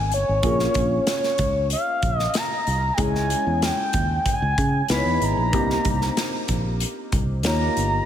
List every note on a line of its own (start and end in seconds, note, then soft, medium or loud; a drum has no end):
0.00 0.13 G#1 medium
0.00 0.38 A#3 medium
0.00 0.39 D#4 medium
0.00 0.39 G#4 medium
0.00 0.39 A#4 medium
0.00 0.40 D#5 medium
0.00 0.13 G#5 loud
0.12 0.24 G1 medium
0.12 1.04 C#5 medium
0.12 closed hi-hat medium
0.29 0.40 G#1 medium
0.42 0.66 A#1 loud
0.42 2.94 A#3 medium
0.42 2.94 C#4 medium
0.42 2.94 F4 medium
0.42 2.95 G#4 medium
0.42 0.50 A#4 soft
0.42 kick loud
0.42 closed hi-hat medium
0.51 2.98 C#5 medium
0.59 snare soft
0.74 0.99 A#1 medium
0.74 kick medium
0.74 closed hi-hat medium
1.07 1.68 C#5 medium
1.07 snare medium
1.07 closed hi-hat medium
1.24 snare soft
1.38 1.74 C#2 medium
1.38 kick medium
1.38 closed hi-hat medium
1.70 2.18 F5 medium
1.70 closed hi-hat medium
2.02 2.26 A#1 medium
2.02 kick medium
2.02 closed hi-hat medium
2.18 2.38 D#5 medium
2.18 snare soft
2.34 2.95 A#5 loud
2.34 snare loud
2.34 closed hi-hat medium
2.67 2.90 C2 medium
2.67 closed hi-hat medium
2.93 4.85 G#3 medium
2.93 3.01 G5 medium
2.98 3.33 C#2 loud
2.98 4.86 C#4 medium
2.98 4.86 E4 medium
2.98 4.86 G#4 medium
2.98 4.87 C#5 medium
2.98 3.66 G#5 loud
2.98 kick loud
2.98 closed hi-hat medium
3.15 snare soft
3.30 closed hi-hat medium
3.47 3.70 E2 medium
3.62 4.27 G5 loud
3.62 snare medium
3.62 closed hi-hat medium
3.93 4.17 D#2 medium
3.93 kick medium
3.93 closed hi-hat medium
4.26 4.87 G#5 loud
4.26 kick medium
4.26 closed hi-hat medium
4.42 4.54 C#2 medium
4.58 4.81 C#3 loud
4.58 kick medium
4.58 closed hi-hat medium
4.88 5.01 C#2 medium
4.88 5.53 B3 medium
4.88 5.53 D#4 medium
4.88 5.53 E4 medium
4.88 5.53 G#4 soft
4.88 4.96 B4 medium
4.88 5.25 B5 loud
4.88 snare loud
4.88 closed hi-hat medium
4.97 5.57 C#5 medium
5.06 5.17 E2 medium
5.21 5.33 G#1 medium
5.21 6.50 A#5 loud
5.21 closed hi-hat medium
5.37 5.54 A#1 medium
5.51 5.77 C2 loud
5.51 7.39 A#3 medium
5.51 7.40 C4 medium
5.51 5.59 D4 soft
5.51 7.41 G4 medium
5.51 7.41 C5 medium
5.51 kick loud
5.51 closed hi-hat medium
5.59 7.43 D#4 medium
5.70 snare soft
5.85 6.09 C2 medium
5.85 kick medium
5.85 closed hi-hat medium
6.01 snare soft
6.17 snare medium
6.17 closed hi-hat medium
6.48 6.83 A#1 medium
6.48 kick medium
6.48 closed hi-hat medium
6.80 closed hi-hat medium
7.12 7.45 C2 medium
7.12 kick medium
7.12 closed hi-hat medium
7.43 7.68 D#2 medium
7.43 8.05 A#3 medium
7.43 8.05 D#4 soft
7.43 8.05 F4 soft
7.43 8.05 G4 soft
7.43 8.05 C#5 medium
7.43 8.05 A#5 loud
7.43 snare loud
7.43 closed hi-hat medium
7.77 8.00 G1 medium
7.77 closed hi-hat medium